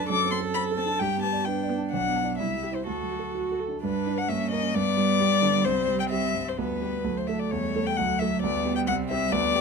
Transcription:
0.00 0.10 F#2 medium
0.00 0.12 A3 soft
0.00 0.12 D4 medium
0.00 0.12 A4 medium
0.09 0.98 F#2 medium
0.09 1.03 A4 medium
0.09 0.31 D6 loud
0.25 0.49 C4 soft
0.31 0.49 C4 medium
0.31 0.39 C6 medium
0.40 0.64 A4 medium
0.54 0.79 C5 soft
0.54 0.62 B5 loud
0.71 0.95 A4 soft
0.77 0.95 C4 medium
0.77 1.00 A5 medium
0.86 1.01 D4 soft
0.99 1.90 G2 medium
0.99 1.48 G4 medium
0.99 1.21 G5 medium
1.17 1.41 B3 soft
1.22 1.40 B3 medium
1.22 1.46 A5 medium
1.32 1.56 D5 soft
1.45 2.41 D4 medium
1.45 1.71 B4 soft
1.45 1.69 G5 medium
1.63 1.87 D5 soft
1.70 1.87 B3 medium
1.78 1.93 D4 soft
1.92 2.38 B1 medium
1.92 2.35 F#5 medium
2.08 2.33 B3 soft
2.16 2.33 D4 soft
2.24 2.38 D4 soft
2.24 2.38 D5 soft
2.38 2.85 C2 soft
2.38 2.86 E4 soft
2.38 2.76 E5 medium
2.55 2.80 G3 soft
2.63 2.81 G4 soft
2.71 2.85 E4 soft
2.71 2.86 C5 soft
2.71 2.86 C5 medium
2.86 3.80 D2 soft
2.86 3.57 F#4 soft
2.86 3.57 A4 medium
3.03 3.29 F#3 soft
3.11 3.29 F#4 soft
3.19 3.44 A4 soft
3.35 3.60 F#4 soft
3.35 3.61 F#4 soft
3.51 3.77 A4 soft
3.60 3.83 A4 soft
3.68 3.83 D4 soft
3.81 4.28 G2 medium
3.81 4.30 G3 soft
3.81 4.31 D4 medium
3.81 4.19 B4 medium
4.07 4.27 D4 soft
4.07 4.27 B4 soft
4.17 4.30 F#5 medium
4.28 4.73 G2 medium
4.28 4.77 A#3 medium
4.28 4.76 C#4 medium
4.28 4.51 E5 medium
4.51 4.72 C#4 soft
4.51 4.72 A#4 medium
4.51 4.76 D#5 medium
4.74 5.63 G2 medium
4.74 6.58 G3 medium
4.74 5.65 B3 medium
4.74 5.66 D5 loud
4.97 5.33 G3 medium
5.20 5.40 B3 medium
5.20 5.40 G4 medium
5.42 5.65 D3 medium
5.65 6.55 C2 medium
5.65 6.59 C4 medium
5.65 5.99 C5 loud
5.88 6.25 G3 medium
5.99 6.04 G5 medium
6.10 6.32 C4 soft
6.10 6.32 G4 soft
6.10 6.50 E5 loud
6.35 6.58 G2 soft
6.48 6.58 C5 medium
6.57 7.03 D2 medium
6.57 7.06 G3 soft
6.57 7.06 B3 medium
6.57 7.18 B4 medium
6.82 7.02 B3 soft
6.82 7.03 G4 soft
7.04 7.50 D2 soft
7.04 7.31 F#3 soft
7.04 8.42 A3 medium
7.17 7.29 C5 medium
7.28 7.49 A3 soft
7.28 7.49 A4 soft
7.28 7.41 E5 medium
7.39 7.52 D5 medium
7.50 7.97 E2 medium
7.50 7.99 G3 medium
7.50 7.88 C#5 medium
7.76 7.96 A3 soft
7.76 7.96 A4 medium
7.86 7.98 G5 medium
7.97 8.42 D2 medium
7.97 8.43 F#3 medium
7.97 8.20 F#5 medium
8.19 8.41 A3 soft
8.19 8.41 A4 medium
8.19 8.42 E5 medium
8.42 8.86 D2 medium
8.42 9.61 G3 medium
8.42 8.89 B3 medium
8.42 8.75 D5 medium
8.65 8.85 B3 medium
8.65 8.85 G4 soft
8.76 8.80 G5 medium
8.87 9.31 C2 medium
8.87 9.33 C4 medium
8.87 8.95 F#5 loud
9.09 9.30 C4 medium
9.09 9.31 G4 medium
9.09 9.34 E5 loud
9.31 9.61 D2 medium
9.31 9.61 B3 medium
9.31 9.61 D5 loud
9.55 9.61 B3 medium
9.55 9.61 G4 medium

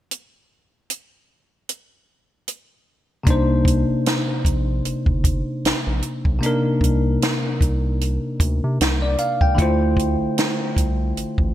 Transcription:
0.11 closed hi-hat soft
0.90 closed hi-hat medium
1.69 closed hi-hat medium
2.48 closed hi-hat medium
3.23 3.85 C2 loud
3.23 6.37 C3 medium
3.23 6.38 A#3 medium
3.23 6.39 D4 medium
3.23 kick loud
3.23 closed hi-hat medium
3.29 6.39 D#4 medium
3.29 6.40 C5 medium
3.65 kick medium
3.65 closed hi-hat medium
3.89 3.96 A#1 soft
4.06 snare loud
4.06 closed hi-hat medium
4.45 4.81 A#1 medium
4.45 kick medium
4.45 closed hi-hat medium
4.85 4.94 G1 soft
4.85 closed hi-hat medium
5.06 5.43 G1 medium
5.06 kick medium
5.24 kick medium
5.24 closed hi-hat medium
5.64 5.73 A#1 soft
5.64 snare medium
5.64 closed hi-hat medium
5.87 6.02 A#1 medium
6.02 closed hi-hat medium
6.25 6.41 B1 medium
6.25 kick medium
6.39 9.52 C3 medium
6.39 9.53 A#3 medium
6.39 9.54 D4 medium
6.39 closed hi-hat medium
6.45 9.55 D#4 medium
6.45 9.56 A#4 medium
6.81 7.18 C2 medium
6.81 kick medium
6.81 closed hi-hat medium
7.22 snare loud
7.22 closed hi-hat medium
7.61 8.19 C2 medium
7.61 kick medium
7.61 closed hi-hat medium
8.01 closed hi-hat medium
8.40 8.61 D2 medium
8.40 kick medium
8.40 closed hi-hat medium
8.64 8.79 C3 medium
8.81 9.16 C2 loud
8.81 snare medium
8.81 closed hi-hat medium
9.02 9.18 D5 medium
9.18 9.40 F5 medium
9.18 closed hi-hat soft
9.41 9.57 C#2 medium
9.41 9.79 G5 medium
9.41 kick medium
9.55 11.54 D3 medium
9.55 11.54 A3 medium
9.55 11.54 E4 medium
9.55 kick loud
9.55 closed hi-hat medium
9.59 10.16 D2 loud
9.59 11.54 F4 medium
9.59 11.54 C5 medium
9.97 kick medium
9.97 closed hi-hat medium
10.21 10.28 C2 soft
10.38 snare loud
10.38 closed hi-hat medium
10.77 11.13 C2 medium
10.77 kick medium
10.77 closed hi-hat medium
11.17 11.26 A1 soft
11.17 closed hi-hat medium
11.38 11.54 A1 medium
11.38 kick medium

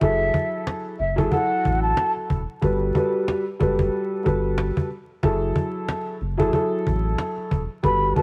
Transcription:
0.01 0.30 F#1 loud
0.01 0.92 F#3 medium
0.01 0.92 E4 medium
0.01 0.93 G#4 medium
0.01 0.93 A4 loud
0.01 0.62 E5 loud
0.01 cajon bass loud
0.34 cajon bass loud
0.67 cajon slap loud
0.99 1.28 F#1 medium
0.99 1.16 E5 medium
0.99 cajon slap medium
1.16 1.29 F#3 loud
1.16 1.30 E4 medium
1.16 1.36 G#4 medium
1.16 1.31 A4 loud
1.16 cajon bass medium
1.31 2.37 F#3 medium
1.31 2.37 E4 medium
1.31 2.38 F#4 medium
1.31 2.38 A4 loud
1.31 1.79 F#5 medium
1.31 cajon bass loud
1.65 1.94 A1 medium
1.65 cajon bass loud
1.82 2.12 A5 medium
1.82 cajon slap soft
1.97 cajon slap loud
2.16 cajon slap soft
2.30 2.46 E1 medium
2.30 cajon bass loud
2.61 2.91 G1 loud
2.61 2.92 G3 loud
2.61 2.92 F#4 medium
2.61 2.93 A4 medium
2.61 2.93 B4 loud
2.61 cajon bass loud
2.94 3.41 G3 loud
2.94 3.41 F#4 medium
2.94 3.42 A4 medium
2.94 3.42 B4 loud
2.94 cajon bass loud
3.28 cajon slap loud
3.59 3.89 F#1 loud
3.59 4.20 G3 loud
3.59 4.21 F#4 medium
3.59 4.21 A4 medium
3.59 4.21 B4 loud
3.59 cajon bass loud
3.79 cajon bass loud
3.93 cajon slap soft
4.24 4.71 G1 loud
4.24 4.85 G3 medium
4.24 4.85 F#4 medium
4.24 4.86 A4 medium
4.24 4.86 B4 loud
4.24 cajon bass loud
4.44 cajon slap soft
4.58 cajon slap loud
4.77 cajon bass loud
4.90 cajon slap soft
5.23 5.52 F#1 loud
5.23 6.14 F#3 medium
5.23 6.14 E4 medium
5.23 6.14 G#4 medium
5.23 6.15 A4 loud
5.23 cajon bass loud
5.56 cajon bass loud
5.89 cajon slap loud
6.21 6.50 F#1 medium
6.21 cajon slap medium
6.38 6.51 F#3 loud
6.38 6.52 E4 medium
6.38 6.52 G#4 medium
6.38 6.53 A4 loud
6.38 cajon bass loud
6.52 7.59 F#3 medium
6.52 7.59 E4 medium
6.52 7.59 G#4 medium
6.52 7.60 A4 loud
6.52 cajon bass loud
6.87 7.16 A1 medium
6.87 cajon bass loud
7.05 cajon slap soft
7.18 cajon slap loud
7.38 cajon slap soft
7.51 7.68 E1 medium
7.51 cajon bass loud
7.83 8.13 G1 loud
7.83 8.14 G3 medium
7.83 8.14 F#4 medium
7.83 8.14 A4 medium
7.83 8.15 B4 loud
7.83 8.14 B5 loud
7.83 cajon bass loud
8.15 8.22 G3 loud
8.15 8.22 F#4 medium
8.15 8.22 A4 medium
8.15 8.22 B4 loud
8.15 8.22 A5 medium
8.15 cajon bass loud

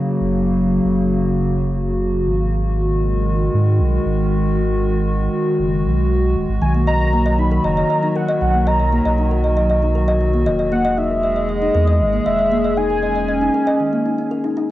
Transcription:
0.00 2.47 C#3 medium
0.00 2.47 F#3 medium
0.00 2.47 A#3 medium
0.00 10.68 F#4 medium
0.21 0.79 F#1 loud
0.85 2.27 F#1 medium
2.26 3.49 G#1 loud
2.51 6.58 D#3 medium
2.51 6.58 G#3 medium
3.54 3.81 G#2 loud
3.80 3.99 B1 medium
4.05 5.28 G#1 loud
5.59 5.86 F#1 medium
5.85 6.35 B1 loud
6.36 6.46 D#1 loud
6.49 6.58 G#1 loud
6.62 7.59 B1 loud
6.62 6.66 D#3 medium
6.62 10.68 D#3 medium
6.62 10.68 F#3 medium
6.62 6.73 G#5 loud
6.75 6.82 A#3 medium
6.87 6.92 D#5 medium
6.87 7.40 A#5 loud
7.00 7.11 D#5 medium
7.13 7.17 A#3 medium
7.26 7.33 D#5 loud
7.39 7.46 D#4 medium
7.39 7.66 B5 loud
7.52 7.59 A#4 medium
7.64 7.83 F#1 loud
7.64 7.72 D#5 medium
7.64 8.17 A#5 loud
7.77 7.81 D#5 medium
7.90 7.97 D#5 medium
8.03 8.07 D#4 medium
8.15 8.20 A#4 medium
8.15 8.41 F#5 loud
8.28 8.39 D#5 loud
8.41 9.00 B1 loud
8.41 8.46 D#3 medium
8.41 8.68 F#5 medium
8.54 8.61 A#3 medium
8.67 8.71 D#5 loud
8.67 9.44 A#5 loud
8.80 8.91 D#5 medium
8.92 8.97 A#3 loud
9.05 10.48 B1 medium
9.05 9.13 D#5 loud
9.18 9.25 D#4 medium
9.31 9.38 A#4 medium
9.44 9.51 D#5 medium
9.57 9.61 D#5 medium
9.69 9.77 D#5 medium
9.82 9.87 D#4 medium
9.95 9.99 A#4 medium
10.08 10.19 D#5 loud
10.21 10.25 D#3 medium
10.34 10.41 A#3 medium
10.46 11.69 E1 loud
10.46 10.51 D#5 loud
10.59 10.70 D#5 medium
10.72 14.71 G#3 medium
10.72 10.76 A#3 loud
10.72 14.71 G#4 medium
10.72 10.99 F#5 loud
10.85 10.92 D#5 loud
10.98 11.05 D#4 medium
10.98 11.50 E5 loud
11.11 11.18 A#4 medium
11.23 11.31 D#5 medium
11.36 11.40 D#5 medium
11.49 12.25 D#5 loud
11.49 11.56 D#5 medium
11.62 11.66 D#4 medium
11.75 12.02 E2 loud
11.75 11.79 A#4 medium
11.88 11.98 D#5 loud
12.00 12.19 G#1 medium
12.00 12.05 D#3 medium
12.13 12.20 A#3 medium
12.26 13.49 E1 medium
12.26 12.30 D#5 loud
12.26 12.79 E5 loud
12.39 12.50 D#5 medium
12.52 12.56 A#3 loud
12.64 12.72 D#5 loud
12.77 14.71 C#4 medium
12.77 12.84 D#4 medium
12.77 14.31 G#5 loud
12.90 12.97 A#4 medium
13.03 13.10 D#5 medium
13.16 13.20 D#5 medium
13.29 13.36 D#5 medium
13.41 13.46 D#4 medium
13.54 13.58 A#4 medium
13.67 13.78 D#5 loud
13.80 13.84 D#3 medium
13.93 14.00 A#3 medium
14.05 14.13 D#4 medium
14.18 14.25 C#4 medium
14.31 14.38 A#4 medium
14.44 14.51 D#4 medium
14.57 14.61 D#4 loud

